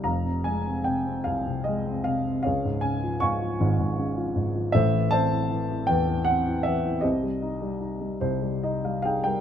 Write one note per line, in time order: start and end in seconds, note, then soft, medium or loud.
0.04 2.40 F1 medium
0.04 2.40 F2 medium
0.04 1.21 F5 medium
0.04 0.46 A#5 medium
0.25 0.85 C3 soft
0.44 1.65 G#3 soft
0.44 0.86 G#5 medium
0.66 1.04 C4 soft
0.84 1.25 C3 medium
0.84 1.26 G5 medium
1.06 1.85 C4 medium
1.24 2.41 C2 medium
1.24 1.45 C3 medium
1.24 1.66 F5 medium
1.47 2.05 C3 medium
1.64 2.43 G#3 medium
1.64 2.06 D#5 medium
1.86 2.25 C4 medium
2.04 2.44 C3 medium
2.04 2.41 F5 medium
2.26 2.45 C4 medium
2.43 4.71 C#2 medium
2.43 3.55 G#4 medium
2.43 3.55 C#5 medium
2.43 2.79 F5 medium
2.65 3.20 G#2 medium
2.81 3.97 C#3 medium
2.81 3.20 G#5 medium
3.03 3.40 F3 medium
3.20 3.59 G#2 medium
3.20 4.32 F5 medium
3.20 4.32 G#5 medium
3.20 4.31 C#6 medium
3.41 4.15 F3 medium
3.60 4.70 G#1 medium
3.60 3.78 G#2 medium
3.79 4.34 G#2 medium
3.98 4.72 C#3 medium
4.17 4.54 F3 medium
4.36 4.73 G#2 medium
4.56 4.74 F3 medium
4.72 7.00 A1 medium
4.72 7.00 A2 medium
4.72 5.86 A4 medium
4.72 5.11 C5 medium
4.72 5.09 E5 loud
4.93 5.50 E3 medium
5.11 6.27 C4 medium
5.11 6.24 C5 medium
5.11 6.24 E5 medium
5.11 5.91 A5 loud
5.32 5.69 E4 medium
5.51 5.88 E3 medium
5.71 6.46 E4 medium
5.87 7.00 E2 medium
5.87 6.07 E3 medium
5.87 6.28 G5 loud
6.09 6.65 E3 medium
6.25 7.02 C4 medium
6.25 6.65 F#5 loud
6.48 6.84 E4 medium
6.63 7.03 E3 medium
6.63 7.04 E5 medium
6.85 7.03 E4 medium
7.01 8.20 C2 medium
7.01 8.20 C3 medium
7.01 9.00 G4 medium
7.01 8.19 C5 medium
7.01 8.62 D#5 medium
7.23 7.60 G3 medium
7.42 7.79 D#4 medium
7.62 7.99 G3 soft
7.81 8.62 D#4 soft
8.01 8.40 G3 soft
8.21 9.41 C2 medium
8.21 9.41 C3 medium
8.21 8.60 C5 medium
8.42 8.83 G3 soft
8.63 9.04 D#4 medium
8.63 8.83 D#5 medium
8.85 9.24 G3 medium
8.85 9.01 F5 medium
9.02 9.41 D#4 medium
9.02 9.24 G#4 medium
9.02 9.23 F5 medium
9.02 9.22 G5 medium
9.24 9.41 G3 medium
9.24 9.41 A#4 medium
9.24 9.41 G5 medium